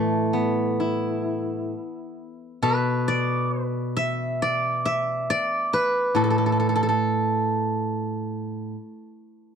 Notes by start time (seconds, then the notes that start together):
Already playing: A2 E3 A3 A4 B4 D5 E5 G5 A5 B5
0.33 B3
0.80 E4
2.62 B2 B4
3.08 D5
3.65 B4
3.97 E5
4.42 D5
4.85 E5
5.30 D5
5.73 B4
6.15 A2 A4
6.24 A4
6.30 A4
6.38 A4
6.46 A4
6.52 A4
6.60 A4
6.69 A4
6.75 A4
6.83 A4
6.89 A4